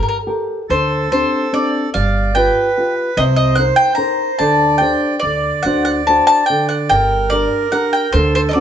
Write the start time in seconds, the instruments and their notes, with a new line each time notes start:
Already playing: nylon-string guitar G4 A4 A#4
0.03 mandolin A#4
0.09 mandolin A#4
0.27 nylon-string guitar G4 A4 A#4
0.69 upright bass D2, nylon-string guitar D3, accordion A4, mandolin C5
1.12 nylon-string guitar C4 D4 G4, mandolin C5
1.53 nylon-string guitar C4 D4 G4, mandolin D5
1.94 upright bass G1, nylon-string guitar G3, accordion D5, mandolin F5
2.35 nylon-string guitar F4 G4 B4, accordion B4, mandolin G5
2.78 nylon-string guitar F4 G4 B4
3.17 upright bass C2, nylon-string guitar C3, accordion C5, mandolin D#5
3.36 mandolin D#5
3.55 nylon-string guitar D#4 A#4, mandolin F#5
3.60 nylon-string guitar C5
3.76 mandolin G5
3.95 nylon-string guitar D#4 A#4 C5, mandolin A#5
4.39 upright bass D2, nylon-string guitar D3, accordion D5, mandolin A5
4.78 nylon-string guitar D4 G4 C5, mandolin G5
5.20 upright bass D2, nylon-string guitar D3, mandolin D5, accordion D5
5.63 upright bass D2, nylon-string guitar D4 F#4 C5, mandolin F#5
5.85 mandolin F#5
6.07 nylon-string guitar D4 F#4 C5, mandolin A5
6.27 mandolin A5
6.46 nylon-string guitar D3, mandolin G5
6.69 mandolin F#5
6.89 upright bass G1, nylon-string guitar G3, accordion A#4, mandolin G5
7.30 nylon-string guitar D4 G4 A#4, mandolin D5
7.72 nylon-string guitar D4 G4 A#4, mandolin F#5
7.93 mandolin G5
8.13 upright bass D2, nylon-string guitar D3, accordion A4, mandolin C5
8.35 mandolin C5
8.49 mandolin D#5
8.53 nylon-string guitar C4 D4 F#4, mandolin D5